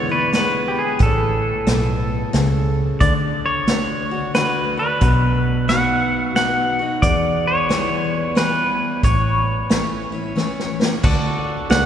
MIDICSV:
0, 0, Header, 1, 7, 480
1, 0, Start_track
1, 0, Key_signature, 2, "major"
1, 0, Tempo, 668896
1, 720, Time_signature, 3, 2, 24, 8
1, 8509, End_track
2, 0, Start_track
2, 0, Title_t, "Pedal steel guitar"
2, 0, Program_c, 0, 26
2, 0, Note_on_c, 0, 73, 86
2, 83, Note_on_c, 0, 71, 81
2, 90, Note_off_c, 0, 73, 0
2, 244, Note_off_c, 0, 71, 0
2, 253, Note_on_c, 0, 71, 81
2, 489, Note_on_c, 0, 67, 51
2, 503, Note_off_c, 0, 71, 0
2, 555, Note_off_c, 0, 67, 0
2, 565, Note_on_c, 0, 68, 78
2, 714, Note_off_c, 0, 68, 0
2, 736, Note_on_c, 0, 69, 77
2, 1975, Note_off_c, 0, 69, 0
2, 2156, Note_on_c, 0, 74, 84
2, 2242, Note_off_c, 0, 74, 0
2, 2480, Note_on_c, 0, 73, 83
2, 3117, Note_off_c, 0, 73, 0
2, 3120, Note_on_c, 0, 71, 85
2, 3431, Note_off_c, 0, 71, 0
2, 3439, Note_on_c, 0, 71, 80
2, 4054, Note_off_c, 0, 71, 0
2, 4083, Note_on_c, 0, 78, 90
2, 4556, Note_off_c, 0, 78, 0
2, 4565, Note_on_c, 0, 78, 93
2, 4933, Note_off_c, 0, 78, 0
2, 5039, Note_on_c, 0, 74, 87
2, 5361, Note_off_c, 0, 74, 0
2, 5364, Note_on_c, 0, 73, 90
2, 5976, Note_off_c, 0, 73, 0
2, 6009, Note_on_c, 0, 71, 76
2, 6488, Note_off_c, 0, 71, 0
2, 6490, Note_on_c, 0, 73, 71
2, 7731, Note_off_c, 0, 73, 0
2, 8400, Note_on_c, 0, 78, 76
2, 8509, Note_off_c, 0, 78, 0
2, 8509, End_track
3, 0, Start_track
3, 0, Title_t, "Pedal steel guitar"
3, 0, Program_c, 1, 26
3, 7919, Note_on_c, 1, 66, 65
3, 7927, Note_on_c, 1, 69, 67
3, 7936, Note_on_c, 1, 74, 69
3, 8509, Note_off_c, 1, 66, 0
3, 8509, Note_off_c, 1, 69, 0
3, 8509, Note_off_c, 1, 74, 0
3, 8509, End_track
4, 0, Start_track
4, 0, Title_t, "Upright piano"
4, 0, Program_c, 2, 0
4, 8394, Note_on_c, 2, 66, 59
4, 8398, Note_on_c, 2, 69, 58
4, 8402, Note_on_c, 2, 74, 68
4, 8509, Note_off_c, 2, 66, 0
4, 8509, Note_off_c, 2, 69, 0
4, 8509, Note_off_c, 2, 74, 0
4, 8509, End_track
5, 0, Start_track
5, 0, Title_t, "Steel-string acoustic guitar"
5, 0, Program_c, 3, 25
5, 0, Note_on_c, 3, 40, 77
5, 66, Note_on_c, 3, 64, 48
5, 82, Note_on_c, 3, 59, 43
5, 206, Note_off_c, 3, 40, 0
5, 229, Note_off_c, 3, 64, 0
5, 234, Note_on_c, 3, 50, 54
5, 237, Note_off_c, 3, 59, 0
5, 238, Note_on_c, 3, 56, 56
5, 245, Note_on_c, 3, 59, 62
5, 249, Note_on_c, 3, 64, 71
5, 701, Note_off_c, 3, 50, 0
5, 703, Note_off_c, 3, 56, 0
5, 706, Note_off_c, 3, 59, 0
5, 709, Note_off_c, 3, 64, 0
5, 711, Note_on_c, 3, 45, 81
5, 1196, Note_on_c, 3, 47, 78
5, 1643, Note_off_c, 3, 45, 0
5, 1662, Note_off_c, 3, 47, 0
5, 1674, Note_on_c, 3, 49, 81
5, 2141, Note_off_c, 3, 49, 0
5, 2156, Note_on_c, 3, 50, 80
5, 2627, Note_off_c, 3, 50, 0
5, 2635, Note_on_c, 3, 50, 54
5, 2640, Note_on_c, 3, 57, 53
5, 2650, Note_on_c, 3, 62, 59
5, 2651, Note_on_c, 3, 66, 61
5, 2941, Note_off_c, 3, 50, 0
5, 2943, Note_off_c, 3, 57, 0
5, 2943, Note_off_c, 3, 66, 0
5, 2948, Note_off_c, 3, 62, 0
5, 2951, Note_on_c, 3, 66, 53
5, 2968, Note_on_c, 3, 62, 41
5, 3112, Note_off_c, 3, 66, 0
5, 3118, Note_on_c, 3, 50, 59
5, 3120, Note_off_c, 3, 62, 0
5, 3127, Note_on_c, 3, 57, 61
5, 3130, Note_on_c, 3, 62, 60
5, 3136, Note_on_c, 3, 66, 67
5, 3417, Note_off_c, 3, 66, 0
5, 3422, Note_off_c, 3, 50, 0
5, 3426, Note_on_c, 3, 66, 54
5, 3427, Note_off_c, 3, 57, 0
5, 3428, Note_off_c, 3, 62, 0
5, 3442, Note_on_c, 3, 62, 43
5, 3589, Note_off_c, 3, 66, 0
5, 3596, Note_on_c, 3, 47, 85
5, 3598, Note_off_c, 3, 62, 0
5, 4078, Note_on_c, 3, 54, 54
5, 4084, Note_on_c, 3, 59, 58
5, 4086, Note_on_c, 3, 63, 57
5, 4094, Note_on_c, 3, 66, 61
5, 4526, Note_off_c, 3, 47, 0
5, 4543, Note_off_c, 3, 54, 0
5, 4546, Note_off_c, 3, 59, 0
5, 4547, Note_off_c, 3, 63, 0
5, 4551, Note_off_c, 3, 66, 0
5, 4563, Note_on_c, 3, 54, 53
5, 4568, Note_on_c, 3, 59, 55
5, 4574, Note_on_c, 3, 63, 66
5, 4577, Note_on_c, 3, 66, 61
5, 4865, Note_off_c, 3, 54, 0
5, 4865, Note_off_c, 3, 66, 0
5, 4867, Note_off_c, 3, 59, 0
5, 4870, Note_off_c, 3, 63, 0
5, 4873, Note_on_c, 3, 66, 55
5, 4890, Note_on_c, 3, 63, 43
5, 5033, Note_off_c, 3, 66, 0
5, 5042, Note_off_c, 3, 63, 0
5, 5042, Note_on_c, 3, 40, 81
5, 5519, Note_on_c, 3, 52, 49
5, 5523, Note_on_c, 3, 55, 55
5, 5528, Note_on_c, 3, 59, 61
5, 5534, Note_on_c, 3, 64, 65
5, 5968, Note_off_c, 3, 40, 0
5, 5983, Note_off_c, 3, 52, 0
5, 5985, Note_off_c, 3, 55, 0
5, 5988, Note_off_c, 3, 59, 0
5, 5991, Note_off_c, 3, 64, 0
5, 5993, Note_on_c, 3, 52, 58
5, 6001, Note_on_c, 3, 55, 62
5, 6006, Note_on_c, 3, 59, 64
5, 6012, Note_on_c, 3, 64, 66
5, 6460, Note_off_c, 3, 52, 0
5, 6464, Note_off_c, 3, 55, 0
5, 6467, Note_off_c, 3, 59, 0
5, 6470, Note_off_c, 3, 64, 0
5, 6482, Note_on_c, 3, 45, 78
5, 6958, Note_on_c, 3, 52, 52
5, 6964, Note_on_c, 3, 57, 56
5, 6969, Note_on_c, 3, 61, 57
5, 6972, Note_on_c, 3, 64, 59
5, 7254, Note_off_c, 3, 64, 0
5, 7261, Note_off_c, 3, 52, 0
5, 7263, Note_on_c, 3, 64, 54
5, 7264, Note_off_c, 3, 57, 0
5, 7267, Note_off_c, 3, 61, 0
5, 7280, Note_on_c, 3, 61, 43
5, 7408, Note_off_c, 3, 45, 0
5, 7427, Note_off_c, 3, 64, 0
5, 7432, Note_on_c, 3, 52, 54
5, 7436, Note_off_c, 3, 61, 0
5, 7438, Note_on_c, 3, 57, 55
5, 7445, Note_on_c, 3, 61, 58
5, 7450, Note_on_c, 3, 64, 66
5, 7738, Note_off_c, 3, 52, 0
5, 7739, Note_off_c, 3, 64, 0
5, 7741, Note_off_c, 3, 57, 0
5, 7744, Note_off_c, 3, 61, 0
5, 7748, Note_on_c, 3, 64, 54
5, 7766, Note_on_c, 3, 61, 46
5, 7910, Note_off_c, 3, 64, 0
5, 7918, Note_on_c, 3, 50, 86
5, 7919, Note_off_c, 3, 61, 0
5, 8395, Note_on_c, 3, 49, 78
5, 8509, Note_off_c, 3, 49, 0
5, 8509, Note_off_c, 3, 50, 0
5, 8509, End_track
6, 0, Start_track
6, 0, Title_t, "Fingered electric bass"
6, 0, Program_c, 4, 33
6, 0, Note_on_c, 4, 28, 82
6, 409, Note_off_c, 4, 28, 0
6, 720, Note_on_c, 4, 33, 79
6, 1097, Note_off_c, 4, 33, 0
6, 1199, Note_on_c, 4, 35, 70
6, 1608, Note_off_c, 4, 35, 0
6, 1679, Note_on_c, 4, 37, 77
6, 2088, Note_off_c, 4, 37, 0
6, 2160, Note_on_c, 4, 38, 80
6, 3290, Note_off_c, 4, 38, 0
6, 3601, Note_on_c, 4, 35, 81
6, 4730, Note_off_c, 4, 35, 0
6, 5042, Note_on_c, 4, 40, 80
6, 6171, Note_off_c, 4, 40, 0
6, 6485, Note_on_c, 4, 33, 83
6, 7612, Note_off_c, 4, 33, 0
6, 7923, Note_on_c, 4, 38, 84
6, 8298, Note_off_c, 4, 38, 0
6, 8399, Note_on_c, 4, 37, 72
6, 8509, Note_off_c, 4, 37, 0
6, 8509, End_track
7, 0, Start_track
7, 0, Title_t, "Drums"
7, 238, Note_on_c, 9, 38, 76
7, 238, Note_on_c, 9, 42, 56
7, 310, Note_off_c, 9, 38, 0
7, 310, Note_off_c, 9, 42, 0
7, 719, Note_on_c, 9, 42, 58
7, 720, Note_on_c, 9, 36, 102
7, 790, Note_off_c, 9, 42, 0
7, 792, Note_off_c, 9, 36, 0
7, 1198, Note_on_c, 9, 38, 81
7, 1198, Note_on_c, 9, 42, 61
7, 1270, Note_off_c, 9, 38, 0
7, 1270, Note_off_c, 9, 42, 0
7, 1679, Note_on_c, 9, 38, 79
7, 1679, Note_on_c, 9, 42, 61
7, 1751, Note_off_c, 9, 38, 0
7, 1751, Note_off_c, 9, 42, 0
7, 2159, Note_on_c, 9, 36, 108
7, 2159, Note_on_c, 9, 42, 60
7, 2231, Note_off_c, 9, 36, 0
7, 2231, Note_off_c, 9, 42, 0
7, 2638, Note_on_c, 9, 38, 85
7, 2638, Note_on_c, 9, 42, 62
7, 2709, Note_off_c, 9, 38, 0
7, 2709, Note_off_c, 9, 42, 0
7, 3118, Note_on_c, 9, 38, 74
7, 3118, Note_on_c, 9, 42, 59
7, 3190, Note_off_c, 9, 38, 0
7, 3190, Note_off_c, 9, 42, 0
7, 3597, Note_on_c, 9, 42, 56
7, 3600, Note_on_c, 9, 36, 95
7, 3668, Note_off_c, 9, 42, 0
7, 3672, Note_off_c, 9, 36, 0
7, 4082, Note_on_c, 9, 38, 76
7, 4082, Note_on_c, 9, 42, 58
7, 4154, Note_off_c, 9, 38, 0
7, 4154, Note_off_c, 9, 42, 0
7, 4562, Note_on_c, 9, 38, 75
7, 4562, Note_on_c, 9, 42, 55
7, 4634, Note_off_c, 9, 38, 0
7, 4634, Note_off_c, 9, 42, 0
7, 5042, Note_on_c, 9, 36, 100
7, 5044, Note_on_c, 9, 42, 57
7, 5114, Note_off_c, 9, 36, 0
7, 5116, Note_off_c, 9, 42, 0
7, 5527, Note_on_c, 9, 38, 80
7, 5527, Note_on_c, 9, 42, 59
7, 5599, Note_off_c, 9, 38, 0
7, 5599, Note_off_c, 9, 42, 0
7, 6003, Note_on_c, 9, 38, 81
7, 6003, Note_on_c, 9, 42, 62
7, 6074, Note_off_c, 9, 38, 0
7, 6074, Note_off_c, 9, 42, 0
7, 6483, Note_on_c, 9, 36, 102
7, 6485, Note_on_c, 9, 42, 61
7, 6555, Note_off_c, 9, 36, 0
7, 6556, Note_off_c, 9, 42, 0
7, 6964, Note_on_c, 9, 38, 83
7, 6964, Note_on_c, 9, 42, 60
7, 7036, Note_off_c, 9, 38, 0
7, 7036, Note_off_c, 9, 42, 0
7, 7444, Note_on_c, 9, 38, 55
7, 7516, Note_off_c, 9, 38, 0
7, 7603, Note_on_c, 9, 38, 53
7, 7675, Note_off_c, 9, 38, 0
7, 7764, Note_on_c, 9, 38, 84
7, 7836, Note_off_c, 9, 38, 0
7, 7921, Note_on_c, 9, 49, 92
7, 7922, Note_on_c, 9, 36, 102
7, 7992, Note_off_c, 9, 49, 0
7, 7994, Note_off_c, 9, 36, 0
7, 8402, Note_on_c, 9, 38, 81
7, 8402, Note_on_c, 9, 42, 60
7, 8473, Note_off_c, 9, 38, 0
7, 8473, Note_off_c, 9, 42, 0
7, 8509, End_track
0, 0, End_of_file